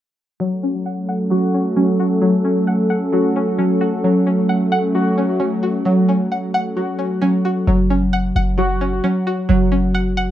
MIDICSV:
0, 0, Header, 1, 5, 480
1, 0, Start_track
1, 0, Key_signature, 3, "minor"
1, 0, Tempo, 454545
1, 425, Time_signature, 4, 2, 24, 8
1, 10887, End_track
2, 0, Start_track
2, 0, Title_t, "Synth pluck"
2, 0, Program_c, 0, 84
2, 422, Note_on_c, 0, 54, 92
2, 666, Note_on_c, 0, 61, 78
2, 906, Note_on_c, 0, 78, 88
2, 1134, Note_off_c, 0, 78, 0
2, 1147, Note_on_c, 0, 78, 96
2, 1363, Note_off_c, 0, 54, 0
2, 1376, Note_on_c, 0, 54, 80
2, 1613, Note_off_c, 0, 61, 0
2, 1626, Note_on_c, 0, 61, 76
2, 1851, Note_off_c, 0, 61, 0
2, 1863, Note_on_c, 0, 61, 90
2, 2107, Note_on_c, 0, 66, 79
2, 2327, Note_off_c, 0, 54, 0
2, 2340, Note_on_c, 0, 54, 96
2, 2346, Note_off_c, 0, 78, 0
2, 2569, Note_off_c, 0, 61, 0
2, 2581, Note_on_c, 0, 61, 78
2, 2823, Note_on_c, 0, 78, 91
2, 3049, Note_off_c, 0, 78, 0
2, 3062, Note_on_c, 0, 78, 94
2, 3287, Note_off_c, 0, 54, 0
2, 3299, Note_on_c, 0, 54, 79
2, 3305, Note_off_c, 0, 66, 0
2, 3536, Note_off_c, 0, 61, 0
2, 3549, Note_on_c, 0, 61, 80
2, 3773, Note_off_c, 0, 61, 0
2, 3786, Note_on_c, 0, 61, 94
2, 4022, Note_on_c, 0, 66, 83
2, 4258, Note_off_c, 0, 54, 0
2, 4263, Note_off_c, 0, 66, 0
2, 4263, Note_off_c, 0, 78, 0
2, 4265, Note_off_c, 0, 61, 0
2, 4270, Note_on_c, 0, 54, 87
2, 4505, Note_on_c, 0, 61, 75
2, 4743, Note_on_c, 0, 78, 86
2, 4970, Note_off_c, 0, 78, 0
2, 4983, Note_on_c, 0, 78, 104
2, 5214, Note_off_c, 0, 54, 0
2, 5226, Note_on_c, 0, 54, 72
2, 5454, Note_off_c, 0, 61, 0
2, 5466, Note_on_c, 0, 61, 80
2, 5686, Note_off_c, 0, 61, 0
2, 5699, Note_on_c, 0, 61, 87
2, 5943, Note_on_c, 0, 66, 79
2, 6167, Note_off_c, 0, 54, 0
2, 6180, Note_on_c, 0, 54, 92
2, 6184, Note_off_c, 0, 78, 0
2, 6414, Note_off_c, 0, 61, 0
2, 6426, Note_on_c, 0, 61, 76
2, 6670, Note_on_c, 0, 78, 75
2, 6896, Note_off_c, 0, 78, 0
2, 6908, Note_on_c, 0, 78, 99
2, 7134, Note_off_c, 0, 54, 0
2, 7144, Note_off_c, 0, 66, 0
2, 7146, Note_on_c, 0, 54, 77
2, 7365, Note_off_c, 0, 61, 0
2, 7378, Note_on_c, 0, 61, 76
2, 7607, Note_off_c, 0, 61, 0
2, 7620, Note_on_c, 0, 61, 98
2, 7866, Note_on_c, 0, 66, 77
2, 8091, Note_off_c, 0, 54, 0
2, 8102, Note_off_c, 0, 61, 0
2, 8104, Note_on_c, 0, 54, 92
2, 8105, Note_off_c, 0, 66, 0
2, 8106, Note_off_c, 0, 78, 0
2, 8347, Note_on_c, 0, 61, 78
2, 8586, Note_on_c, 0, 78, 92
2, 8815, Note_off_c, 0, 78, 0
2, 8828, Note_on_c, 0, 78, 94
2, 9043, Note_off_c, 0, 54, 0
2, 9056, Note_on_c, 0, 54, 81
2, 9292, Note_off_c, 0, 61, 0
2, 9305, Note_on_c, 0, 61, 77
2, 9532, Note_off_c, 0, 61, 0
2, 9544, Note_on_c, 0, 61, 92
2, 9788, Note_on_c, 0, 66, 83
2, 10007, Note_off_c, 0, 54, 0
2, 10020, Note_on_c, 0, 54, 99
2, 10026, Note_off_c, 0, 78, 0
2, 10249, Note_off_c, 0, 61, 0
2, 10261, Note_on_c, 0, 61, 81
2, 10502, Note_on_c, 0, 78, 90
2, 10729, Note_off_c, 0, 78, 0
2, 10742, Note_on_c, 0, 78, 92
2, 10887, Note_off_c, 0, 54, 0
2, 10887, Note_off_c, 0, 61, 0
2, 10887, Note_off_c, 0, 66, 0
2, 10887, Note_off_c, 0, 78, 0
2, 10887, End_track
3, 0, Start_track
3, 0, Title_t, "Analog synth pad"
3, 0, Program_c, 1, 89
3, 424, Note_on_c, 1, 61, 75
3, 424, Note_on_c, 1, 69, 90
3, 425, Note_on_c, 1, 54, 80
3, 425, Note_on_c, 1, 57, 76
3, 4226, Note_off_c, 1, 54, 0
3, 4226, Note_off_c, 1, 57, 0
3, 4265, Note_on_c, 1, 54, 80
3, 4265, Note_on_c, 1, 57, 74
3, 8062, Note_off_c, 1, 61, 0
3, 8062, Note_off_c, 1, 69, 0
3, 8066, Note_off_c, 1, 54, 0
3, 8066, Note_off_c, 1, 57, 0
3, 10887, End_track
4, 0, Start_track
4, 0, Title_t, "Synth keys"
4, 0, Program_c, 2, 88
4, 424, Note_on_c, 2, 54, 89
4, 1385, Note_on_c, 2, 66, 93
4, 1852, Note_off_c, 2, 54, 0
4, 1864, Note_on_c, 2, 54, 78
4, 2330, Note_off_c, 2, 54, 0
4, 2343, Note_on_c, 2, 54, 87
4, 3293, Note_off_c, 2, 66, 0
4, 3305, Note_on_c, 2, 66, 96
4, 3772, Note_off_c, 2, 54, 0
4, 3785, Note_on_c, 2, 54, 77
4, 4253, Note_off_c, 2, 54, 0
4, 4265, Note_off_c, 2, 66, 0
4, 4265, Note_on_c, 2, 54, 91
4, 5225, Note_on_c, 2, 66, 91
4, 5692, Note_off_c, 2, 54, 0
4, 5705, Note_on_c, 2, 54, 78
4, 6172, Note_off_c, 2, 54, 0
4, 6185, Note_on_c, 2, 54, 98
4, 7131, Note_off_c, 2, 66, 0
4, 7144, Note_on_c, 2, 66, 94
4, 7611, Note_off_c, 2, 54, 0
4, 7624, Note_on_c, 2, 54, 81
4, 8092, Note_off_c, 2, 54, 0
4, 8104, Note_off_c, 2, 66, 0
4, 8105, Note_on_c, 2, 54, 94
4, 9065, Note_on_c, 2, 66, 100
4, 9532, Note_off_c, 2, 54, 0
4, 9545, Note_on_c, 2, 54, 80
4, 10010, Note_off_c, 2, 54, 0
4, 10023, Note_on_c, 2, 54, 93
4, 10887, Note_off_c, 2, 54, 0
4, 10887, Note_off_c, 2, 66, 0
4, 10887, End_track
5, 0, Start_track
5, 0, Title_t, "808-style bass"
5, 0, Program_c, 3, 38
5, 8104, Note_on_c, 3, 30, 114
5, 8795, Note_off_c, 3, 30, 0
5, 8824, Note_on_c, 3, 30, 101
5, 9516, Note_off_c, 3, 30, 0
5, 10024, Note_on_c, 3, 30, 115
5, 10887, Note_off_c, 3, 30, 0
5, 10887, End_track
0, 0, End_of_file